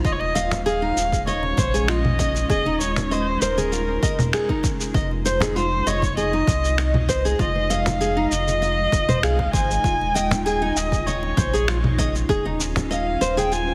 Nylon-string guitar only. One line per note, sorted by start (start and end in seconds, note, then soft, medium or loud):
0.05 0.14 F4 medium
0.35 0.51 D#5 loud
0.66 0.80 G#4 loud
0.82 0.96 D#4 medium
1.27 1.43 D#5 medium
1.58 1.73 C5 medium
1.74 1.87 G#4 loud
1.89 1.98 F4 medium
2.19 2.34 D#5 loud
2.50 2.64 G#4 loud
2.66 2.80 D#4 medium
3.11 3.26 D#5 medium
3.42 3.57 C5 loud
3.58 3.71 G#4 medium
3.72 3.81 F4 medium
4.03 4.18 D#5 loud
4.33 4.48 G#4 loud
4.50 4.63 D#4 medium
4.95 5.10 D#5 medium
5.25 5.41 C5 loud
5.42 5.55 G#4 loud
5.56 5.65 F4 medium
5.87 6.02 D#5 loud
6.17 6.32 G#4 loud
6.33 6.47 D#4 medium
6.78 6.94 D#5 medium
7.09 7.24 C5 loud
7.25 7.38 G#4 loud
7.40 7.49 F4 medium
7.70 7.85 D#5 loud
8.01 8.15 G#4 loud
8.17 8.31 D#4 medium
8.62 8.77 D#5 medium
8.93 9.08 D#5 medium
9.09 9.17 C5 loud
9.23 9.38 G#4 medium
9.54 9.69 C5 medium
9.85 9.94 F4 medium
10.15 10.30 D#5 loud
10.46 10.60 G#4 loud
10.62 10.76 D#4 medium
11.07 11.22 D#5 medium
11.37 11.53 C5 loud
11.53 11.67 G#4 loud
11.68 11.77 F4 medium
11.99 12.14 D#5 loud
12.29 12.44 G#4 loud
12.46 12.59 D#4 medium
12.91 13.06 D#5 medium
13.21 13.36 C5 loud
13.37 13.50 G#4 loud
13.52 13.61 F4 medium